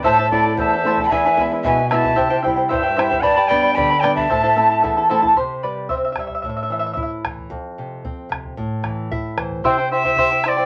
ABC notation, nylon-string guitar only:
X:1
M:2/4
L:1/8
Q:1/4=112
K:Am
V:1 name="Nylon-string guitar" clef=bass
A,, [A,CE] E,, [A,CE] | E,, [^G,B,E] B,, [G,B,E] | C, [G,CE] G,, [G,CE] | G,, [G,B,D] D, [G,B,D] |
A,, [A,CE] E,, [A,CE] | C, G, C, G, | A,, E, E E, | F,, C, C C, |
A,, E, [Ee] [E,c] | C,4 |]